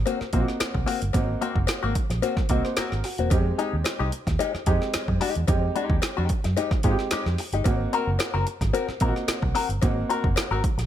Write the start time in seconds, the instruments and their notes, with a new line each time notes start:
0.06 hollow-body jazz guitar A#3 C4 F#4, closed hi-hat, cowbell
0.21 muted hollow-body jazz guitar stroke, muted fingered electric bass stroke, snare
0.33 fingered electric bass A#1, upright piano A#3 C4 D#4 F4, hollow-body jazz guitar A#3 C4 F#4, kick, closed hi-hat
0.40 upright piano F#4
0.47 muted hollow-body jazz guitar stroke, snare
0.60 muted hollow-body jazz guitar stroke, muted fingered electric bass stroke, snare, closed hi-hat, cowbell
0.74 fingered electric bass C2, muted hollow-body jazz guitar stroke, kick
0.86 hollow-body jazz guitar A#3 C4 F#4, snare, open hi-hat
1.02 fingered electric bass G1, muted hollow-body jazz guitar stroke, closed hi-hat
1.13 fingered electric bass G#1, upright piano A#3 C4 D#4 F#4, kick, closed hi-hat, cowbell
1.41 hollow-body jazz guitar A#3 C4 F#4, closed hi-hat
1.55 fingered electric bass F#1, kick
1.67 muted hollow-body jazz guitar stroke, snare, closed hi-hat, cowbell
1.83 fingered electric bass G#1, hollow-body jazz guitar A#3 C4 F#4
1.95 muted hollow-body jazz guitar stroke, kick, closed hi-hat
2.10 fingered electric bass A#1, muted hollow-body jazz guitar stroke, snare, closed hi-hat
2.22 hollow-body jazz guitar A#3 C4 F#4, closed hi-hat, cowbell
2.37 muted fingered electric bass stroke, muted hollow-body jazz guitar stroke, kick, snare
2.49 fingered electric bass C2, upright piano A#3 C4 D#4 F#4 D#5, hollow-body jazz guitar A#3 C4 F#4, kick, closed hi-hat
2.64 upright piano C5, muted hollow-body jazz guitar stroke, snare
2.77 hollow-body jazz guitar A#3 C4 F#4, upright piano A#4, muted fingered electric bass stroke, snare, closed hi-hat, cowbell
2.92 fingered electric bass G#1, snare
3.04 upright piano F#4, muted hollow-body jazz guitar stroke, snare, open hi-hat
3.18 fingered electric bass E1, hollow-body jazz guitar A#3 C4 F#4, closed hi-hat
3.30 fingered electric bass F2, upright piano G3 C4 D#4 G4, kick, closed hi-hat, cowbell
3.37 upright piano G#3
3.58 hollow-body jazz guitar G#3 D#4 G4, closed hi-hat
3.73 fingered electric bass D#2
3.84 muted hollow-body jazz guitar stroke, snare, closed hi-hat, cowbell
3.99 fingered electric bass C2, hollow-body jazz guitar G#3 D#4 G4
4.12 muted hollow-body jazz guitar stroke, closed hi-hat
4.27 fingered electric bass D#2, muted hollow-body jazz guitar stroke, kick, snare, closed hi-hat
4.39 hollow-body jazz guitar G#3 D#4 G4, closed hi-hat, cowbell
4.54 muted hollow-body jazz guitar stroke, muted fingered electric bass stroke, snare
4.66 fingered electric bass F2, hollow-body jazz guitar G#3 D#4 G4, upright piano G#3 C4 D#4 G4, kick, closed hi-hat
4.81 muted hollow-body jazz guitar stroke, snare
4.94 muted fingered electric bass stroke, snare, closed hi-hat, cowbell
5.08 fingered electric bass F#2, muted hollow-body jazz guitar stroke, kick
5.21 hollow-body jazz guitar G#3 D#4 G4, snare, open hi-hat
5.35 fingered electric bass E2, muted hollow-body jazz guitar stroke, closed hi-hat
5.48 fingered electric bass F2, upright piano G#3 C4 D#4 G4, kick, closed hi-hat, cowbell
5.75 hollow-body jazz guitar G#3 D#4 G4, closed hi-hat
5.90 fingered electric bass D#2, kick
6.02 muted hollow-body jazz guitar stroke, snare, closed hi-hat, cowbell
6.17 fingered electric bass F2, hollow-body jazz guitar G#3 D#4 G4
6.29 muted hollow-body jazz guitar stroke, kick, closed hi-hat
6.44 fingered electric bass F#2, muted hollow-body jazz guitar stroke, snare, closed hi-hat
6.57 hollow-body jazz guitar G#3 D#4 G4, closed hi-hat, cowbell
6.71 muted fingered electric bass stroke, muted hollow-body jazz guitar stroke, kick, snare
6.83 fingered electric bass G#2, upright piano G#3 C4 D#4 F4, hollow-body jazz guitar G#3 D#4 G4, kick, closed hi-hat
6.91 upright piano G4
6.99 muted hollow-body jazz guitar stroke, snare
7.11 hollow-body jazz guitar G#3 D#4 G4, muted fingered electric bass stroke, snare, closed hi-hat, cowbell
7.26 fingered electric bass F2, snare
7.38 muted hollow-body jazz guitar stroke, snare, open hi-hat
7.53 fingered electric bass G1, hollow-body jazz guitar G#3 D#4 G4, closed hi-hat
7.64 fingered electric bass G#1, upright piano A#3 C4 D#4 F#4, kick, closed hi-hat, cowbell
7.93 hollow-body jazz guitar C4 F#4 A#4, closed hi-hat
8.07 fingered electric bass F#1
8.19 muted hollow-body jazz guitar stroke, snare, closed hi-hat, cowbell
8.34 fingered electric bass F#1, hollow-body jazz guitar C4 F#4 A#4
8.47 muted hollow-body jazz guitar stroke, closed hi-hat
8.61 fingered electric bass G#1, muted hollow-body jazz guitar stroke, kick, snare, closed hi-hat
8.73 hollow-body jazz guitar C4 F#4 A#4, closed hi-hat, cowbell
8.88 muted hollow-body jazz guitar stroke, muted fingered electric bass stroke, snare
9.00 fingered electric bass A#1, upright piano A#3 C4 D#4 F4, hollow-body jazz guitar C4 F#4 A#4, kick, closed hi-hat
9.08 upright piano F#4
9.16 muted hollow-body jazz guitar stroke, snare
9.28 muted fingered electric bass stroke, snare, closed hi-hat, cowbell
9.42 fingered electric bass C2, muted hollow-body jazz guitar stroke, kick
9.55 hollow-body jazz guitar C4 F#4 A#4, snare, open hi-hat
9.69 fingered electric bass G1, muted hollow-body jazz guitar stroke, closed hi-hat
9.82 fingered electric bass G#1, upright piano A#3 C4 D#4 F#4, kick, closed hi-hat, cowbell
10.10 hollow-body jazz guitar C4 F#4 A#4, closed hi-hat
10.24 fingered electric bass F#1, kick
10.36 muted hollow-body jazz guitar stroke, snare, closed hi-hat, cowbell
10.51 fingered electric bass G#1, hollow-body jazz guitar C4 F#4 A#4
10.64 muted hollow-body jazz guitar stroke, kick, closed hi-hat
10.78 fingered electric bass A#1, muted hollow-body jazz guitar stroke, snare, closed hi-hat